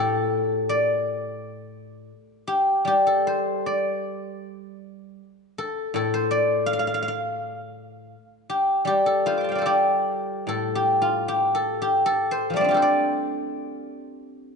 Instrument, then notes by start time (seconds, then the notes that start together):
guzheng
Already playing: A2 G4 A4
0.69 D5
2.47 G4
2.85 G3 G4
3.07 A4
3.27 C5
3.66 D5
5.58 A4
5.94 A2 A4
6.14 C5
6.31 D5
6.66 F5
6.73 F5
6.79 F5
6.87 F5
6.94 F5
7.02 F5
7.08 F5
8.50 G4
8.85 G3 G4
9.06 A4
9.26 F4 C5
9.38 C6 D6
9.44 A5
9.49 F5 G5
9.55 C5 D5
9.62 A4
9.66 G4 D5
10.47 A2 A4
10.75 G4
11.02 F4
11.28 G4
11.55 A4
11.82 G4
12.06 A4
12.31 C5
12.50 F3 G3
12.56 A3 D5
12.61 C4 D4
12.69 F4 G4
12.74 A4 C5
12.82 D5